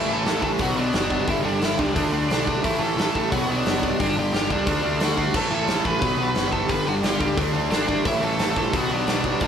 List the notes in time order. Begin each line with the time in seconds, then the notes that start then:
Already playing: E5
0.08 A1 A2 E3 A3 A4
0.13 A5
0.25 A1 A2 E3 A3, snare, open hi-hat
0.42 A1 A2 E3 A3 A4 A5, kick
0.59 B1 B2 F#3 B3 F#4 F#5, kick, open hi-hat
0.76 B1 B2 F#3 B3 D4 D5
0.93 F#1 B2 F#3 B3, snare, open hi-hat
1.10 B2 F#3 B3, kick
1.27 G1 G2 D3 G3 E4 E5, kick, open hi-hat
1.42 G1 G2 D3 G3 D4 C#5
1.46 D5
1.60 G1 G2 D3 G3 E4 E5, snare, open hi-hat
1.77 C#2 G2 D3 G3 D4 D5, kick
1.94 D2 D3 A3 D4, kick, open hi-hat
2.12 D2 D3 A3 D4
2.30 B1 D3 A3 D4 D5, snare, open hi-hat
2.46 D3 A3 D4, kick
2.64 A1 A2 E3 A3 E4 E5, kick, open hi-hat
2.78 A1 A2 E3 A3 A4 A5
2.96 A1 A2 E3 A3, snare, open hi-hat
3.14 A1 A2 E3 A3 A4 A5, kick
3.31 B1 B2 F#3 B3 F#4 F#5, kick, open hi-hat
3.47 B1 B2 F#3 B3 D4
3.51 D5
3.65 F#1 B2 F#3 B3, snare, open hi-hat
3.83 B2 F#3 B3, kick
3.99 G1 G2 D3 G3 D4 D5, kick, open hi-hat
4.17 G1 G2 D3 G3 G4 G5
4.32 G1 G2 D3 G3 G4 G5, snare, open hi-hat
4.50 C#2 G2 D3 G3 D4 D5, kick
4.66 D2 D3 A3 D4, kick, open hi-hat
4.82 D2 D3 A3 D4
5.00 D2 D3 A3 D4 F#4 F#5, snare, open hi-hat
5.16 D3 A3 D4, kick
5.34 A1 A2 E3 A3 A4 A5, kick, crash
5.51 A1 A2 E3 A3 A4
5.55 A5
5.66 A1 A2 E3 A3, snare, open hi-hat
5.85 A1 A2 E3 A3 B4 B5, kick
6.01 B1 B2 F#3 B3, kick, open hi-hat
6.18 B1 B2 F#3 B3
6.35 F#1 B2 F#3 B3, snare, open hi-hat
6.52 B2 F#3 B3 A4 A5, kick
6.68 G1 G2 D3 G3 B4 B5, kick, open hi-hat
6.86 G1 G2 D3 G3 F#4 F#5
7.03 G1 G2 D3 G3 G4 G5, snare, open hi-hat
7.19 C#2 G2 D3 G3, kick
7.37 D2 D3 A3 D4, kick, open hi-hat
7.53 D2 D3 A3 D4
7.71 G#1 D3 A3 D4 D5, snare, open hi-hat
7.87 D3 A3 D4, kick
8.04 A1 A2 E3 A3 E4 E5, kick, open hi-hat
8.21 A1 A2 E3 A3 A4 A5
8.38 A1 A2 E3 A3, snare, open hi-hat
8.55 A#1 A2 E3 A3 A4 A5, kick
8.73 B1 B2 F#3 B3 F#5, kick, open hi-hat
8.77 F#4
8.90 B1 B2 F#3 B3
8.94 D4 D5
9.07 B1 B2 F#3 B3, snare, open hi-hat
9.24 B2 F#3 B3, kick
9.40 G1 G2 D3 G3 D4 D5, kick, open hi-hat